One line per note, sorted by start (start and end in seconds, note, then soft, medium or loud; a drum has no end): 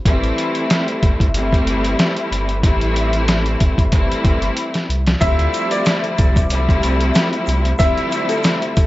0.05 0.32 A1 loud
0.05 1.25 E3 loud
0.05 1.25 G3 medium
0.05 1.26 A3 loud
0.05 1.26 C4 loud
0.05 1.26 E4 loud
0.05 kick loud
0.05 closed hi-hat medium
0.24 closed hi-hat soft
0.38 closed hi-hat medium
0.55 closed hi-hat medium
0.70 snare loud
0.70 closed hi-hat loud
0.88 closed hi-hat soft
1.03 1.95 G1 medium
1.03 kick loud
1.03 closed hi-hat medium
1.20 kick medium
1.20 closed hi-hat medium
1.34 2.55 E3 loud
1.34 2.55 G3 loud
1.34 2.55 A3 loud
1.34 2.55 C4 loud
1.34 2.55 E4 loud
1.34 closed hi-hat loud
1.53 kick medium
1.53 closed hi-hat medium
1.67 closed hi-hat medium
1.84 closed hi-hat medium
1.99 snare loud
1.99 closed hi-hat loud
2.17 closed hi-hat medium
2.31 2.65 G1 loud
2.31 closed hi-hat medium
2.49 closed hi-hat soft
2.63 3.56 A1 loud
2.63 3.83 E3 loud
2.63 3.83 G3 medium
2.63 3.83 A3 medium
2.63 3.83 C4 medium
2.63 3.83 E4 loud
2.63 kick loud
2.63 closed hi-hat medium
2.81 closed hi-hat soft
2.96 closed hi-hat medium
3.13 closed hi-hat medium
3.28 snare loud
3.28 closed hi-hat loud
3.46 closed hi-hat soft
3.60 4.13 G1 medium
3.60 kick medium
3.60 closed hi-hat medium
3.78 kick medium
3.78 closed hi-hat medium
3.92 4.97 E3 loud
3.92 4.97 G3 medium
3.92 4.97 A3 medium
3.92 4.97 C4 medium
3.92 4.97 E4 loud
3.92 kick loud
3.92 closed hi-hat loud
4.12 closed hi-hat medium
4.25 4.51 G1 loud
4.25 kick loud
4.25 closed hi-hat medium
4.42 closed hi-hat medium
4.57 closed hi-hat loud
4.74 snare medium
4.74 closed hi-hat medium
4.89 5.16 C2 medium
4.89 closed hi-hat medium
5.07 snare medium
5.07 closed hi-hat soft
5.20 6.41 D2 medium
5.20 5.48 D2 loud
5.20 6.41 F3 loud
5.20 6.41 G3 medium
5.20 6.41 A3 loud
5.20 6.41 C4 medium
5.20 6.41 E4 loud
5.20 5.68 E5 loud
5.20 kick loud
5.20 closed hi-hat medium
5.20 shaker medium
5.39 closed hi-hat soft
5.54 closed hi-hat medium
5.54 shaker medium
5.71 7.29 D5 medium
5.71 closed hi-hat medium
5.71 shaker medium
5.86 snare loud
5.86 closed hi-hat loud
5.86 shaker medium
6.04 closed hi-hat soft
6.18 7.11 C2 medium
6.18 kick loud
6.18 closed hi-hat medium
6.18 shaker soft
6.36 kick medium
6.36 closed hi-hat medium
6.36 shaker medium
6.50 7.71 D2 loud
6.50 7.71 F3 medium
6.50 7.71 G3 medium
6.50 7.71 A3 loud
6.50 7.71 C4 medium
6.50 7.71 E4 loud
6.50 closed hi-hat loud
6.50 shaker medium
6.69 kick medium
6.69 closed hi-hat soft
6.83 closed hi-hat medium
6.83 shaker medium
7.00 closed hi-hat medium
7.15 snare loud
7.15 closed hi-hat loud
7.15 shaker medium
7.33 closed hi-hat soft
7.47 7.74 C2 loud
7.47 closed hi-hat medium
7.47 shaker medium
7.65 closed hi-hat soft
7.79 8.87 D2 loud
7.79 8.87 F3 loud
7.79 8.87 G3 loud
7.79 8.87 A3 loud
7.79 8.87 C4 loud
7.79 8.87 E4 loud
7.79 8.26 E5 loud
7.79 kick loud
7.79 closed hi-hat medium
7.79 shaker medium
7.98 closed hi-hat soft
8.12 closed hi-hat medium
8.12 shaker medium
8.29 8.87 A4 medium
8.29 closed hi-hat medium
8.29 shaker medium
8.44 snare loud
8.44 closed hi-hat loud
8.44 shaker medium
8.62 closed hi-hat soft
8.77 kick loud
8.77 closed hi-hat medium
8.77 shaker soft